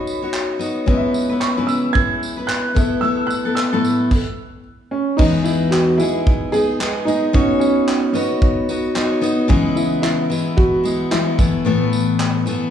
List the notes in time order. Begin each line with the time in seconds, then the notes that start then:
Already playing: B3 C#4 D#4 F#4 B4 C#5 D#5 B5
0.07 tambourine
0.22 D#4 F#4 C#5
0.34 clap
0.59 B3 D#4 F#4 C#5, tambourine
0.86 G#3 B3 C#4 E4 B4 D#5, kick
0.97 E5
1.14 tambourine
1.29 B3 E4 B4
1.40 C#6, clap
1.57 C#3 G#3 B3 E4 B4
1.67 E6, tambourine
1.93 G#3 B3 E4 G#6, kick
1.97 B4
2.23 tambourine
2.37 B3 E4 B4
2.47 F#6, clap
2.74 A3 B3 E4 A4 E5, kick, tambourine
3.01 A3 B3 E4 A4 E6
3.27 F#6, tambourine
3.45 B3 E4 A4
3.55 E6, clap
3.73 A2 A3 B3 E4 A4
3.85 tambourine
4.11 kick, crash
4.91 C#4
5.17 E2 E3 G#3 B3 D#4 G#4, kick, crash
5.44 E4, tambourine
5.71 F#4, clap
5.98 G#3 B3 E4, tambourine
6.02 G#4
6.27 kick
6.52 G#3 B3 D#4 G#4, tambourine
6.80 G#3 B3 D#4 G#4, clap
7.05 G#3 B3 D#4 G#4, tambourine
7.33 B3 C#4 D#4 F#4 C#5, kick
7.60 C#4, tambourine
7.88 clap
8.13 B3 D#4 F#4 C#5, tambourine
8.42 kick
8.69 B3 D#4 F#4 C#5, tambourine
8.95 B3 D#4 F#4 C#5, clap
9.21 B3 D#4 F#4 C#5, tambourine
9.48 C#3 E3 G#3 B3 E4, kick
9.76 E4, tambourine
10.02 E4, clap
10.30 E3 G#3 B3 E4, tambourine
10.57 F#4, kick
10.84 E3 G#3 B3 E4, tambourine
11.11 E3 G#3 B3 E4, clap
11.38 E3 A3 B3 E4, kick, tambourine
11.65 A2 E3 A3 B3 E4
11.93 tambourine
12.20 clap
12.46 E3 A3 B3 E4, tambourine